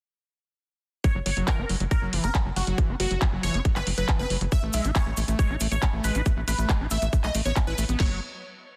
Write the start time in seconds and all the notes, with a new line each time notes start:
1.04 F#3 C#5, kick, closed hi-hat
1.15 F#1 F#3
1.26 G1 F#3 C#5, open hi-hat
1.37 F#1 F#3, closed hi-hat
1.48 E3 A#4, kick, clap, closed hi-hat
1.59 F#1 C#4
1.69 F#1 F#3, open hi-hat
1.80 F#1 F#3, closed hi-hat
1.91 F#3 A#4, kick, closed hi-hat
2.02 F#1 F#3
2.13 F#1 E3, open hi-hat
2.24 F#1 C#4 A#4, closed hi-hat
2.35 F#3, kick, clap, closed hi-hat
2.46 F#1 F#3
2.56 F#1 F#3 F#4, open hi-hat
2.67 F#1 F#3, closed hi-hat
2.78 E3, kick, closed hi-hat
2.89 F#1 C#4
3.00 F#1 F#3 A#3 F#4, open hi-hat
3.11 F#1 F#3, closed hi-hat
3.22 F#3, kick, clap, closed hi-hat
3.32 F#1 F#3
3.43 F#1 E3 C#5, open hi-hat
3.54 F#1 C#4, closed hi-hat
3.65 F#3, kick, closed hi-hat
3.76 G1 F#3 B4, clap
3.87 F#1 F#3, open hi-hat
3.98 F#1 F#3 B4, closed hi-hat
4.08 E3, kick, clap, closed hi-hat
4.19 F#1 C#4 B4
4.30 F#1 F#3, open hi-hat
4.41 F#1 F#3, closed hi-hat
4.52 A3 E5, kick, closed hi-hat, cabasa
4.63 A1 A3
4.73 B1 G#3 E5, open hi-hat, cabasa
4.84 A1 E4, closed hi-hat, cabasa
4.95 A3 C#5, kick, clap, closed hi-hat, cabasa
5.06 A1 A3
5.17 A1 A3, open hi-hat, cabasa
5.28 A1 A3, closed hi-hat, cabasa
5.39 G#3 C#5, kick, closed hi-hat, cabasa
5.50 A1 E4
5.60 A1 A3, open hi-hat, cabasa
5.72 A1 A3 C#5, closed hi-hat, cabasa
5.82 A3, kick, clap, closed hi-hat, cabasa
5.93 A1 A3
6.04 A1 G#3 B4, open hi-hat, cabasa
6.15 A1 E4, closed hi-hat, cabasa
6.26 A3, kick, closed hi-hat, cabasa
6.37 A1 A3
6.48 A1 A3 B4, open hi-hat, cabasa
6.59 A1 A3, closed hi-hat, cabasa
6.69 G#3, kick, clap, closed hi-hat, cabasa
6.80 A1 E4
6.91 A1 A3 E5, open hi-hat, cabasa
7.02 A1 A3, closed hi-hat, cabasa
7.13 A3, kick, closed hi-hat, cabasa
7.24 B1 A3 D#5, clap
7.35 A1 A3, open hi-hat, cabasa
7.45 A1 B3 C#5, closed hi-hat, cabasa
7.56 B3, kick, clap, closed hi-hat, cabasa
7.67 A1 E4 B4
7.78 A1 A3, open hi-hat, cabasa
7.89 A1 B3, closed hi-hat, cabasa
8.00 F#1 F#3 C#5, kick, snare, crash